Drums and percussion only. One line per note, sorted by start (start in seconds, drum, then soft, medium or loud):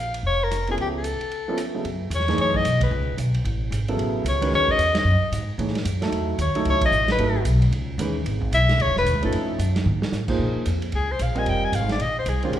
0.14 ride medium
0.51 cross-stick medium
0.51 hi-hat pedal medium
0.51 ride medium
0.67 ride soft
0.78 ride soft
1.04 hi-hat pedal medium
1.04 ride medium
1.21 ride soft
1.31 ride soft
1.57 cross-stick medium
1.57 hi-hat pedal soft
1.57 ride medium
1.85 ride medium
2.11 hi-hat pedal medium
2.11 ride medium
2.20 snare soft
2.28 snare soft
2.28 ride soft
2.38 ride medium
2.54 kick medium
2.65 hi-hat pedal medium
2.65 ride medium
2.81 kick medium
2.81 ride medium
3.18 hi-hat pedal medium
3.18 ride medium
3.34 ride soft
3.45 ride medium
3.72 hi-hat pedal medium
3.72 ride medium
3.88 ride soft
3.99 ride medium
4.26 hi-hat pedal medium
4.26 ride medium
4.42 ride medium
4.52 snare soft
4.68 kick medium
4.79 hi-hat pedal medium
4.79 ride medium
4.95 snare medium
4.95 ride medium
5.32 hi-hat pedal medium
5.32 ride medium
5.59 ride soft
5.67 snare soft
5.75 snare soft
5.75 ride medium
5.85 hi-hat pedal medium
5.85 ride medium
6.02 snare medium
6.02 ride soft
6.12 ride medium
6.39 hi-hat pedal medium
6.39 ride medium
6.55 ride soft
6.65 ride medium
6.81 kick medium
6.81 ride medium
6.92 hi-hat pedal medium
7.08 snare medium
7.08 ride soft
7.18 ride medium
7.45 hi-hat pedal medium
7.45 ride medium
7.62 ride soft
7.72 ride medium
7.99 hi-hat pedal medium
7.99 ride medium
8.26 ride medium
8.42 kick medium
8.53 hi-hat pedal medium
8.53 ride medium
8.69 snare medium
8.69 ride soft
8.80 ride medium
8.96 snare soft
9.06 hi-hat pedal medium
9.06 ride medium
9.23 ride soft
9.32 ride medium
9.59 hi-hat pedal medium
9.59 ride medium
9.76 snare medium
9.76 ride soft
9.86 high tom soft
10.02 snare medium
10.12 snare medium
10.12 hi-hat pedal soft
10.28 kick medium
10.28 crash medium
10.66 hi-hat pedal medium
10.66 ride medium
10.82 ride soft
10.92 ride medium
11.19 hi-hat pedal medium
11.19 ride medium
11.35 ride soft
11.46 ride medium
11.73 hi-hat pedal medium
11.73 ride medium
11.89 snare soft
11.89 ride soft
12.00 ride medium
12.26 hi-hat pedal soft
12.26 ride medium
12.43 ride soft
12.53 ride medium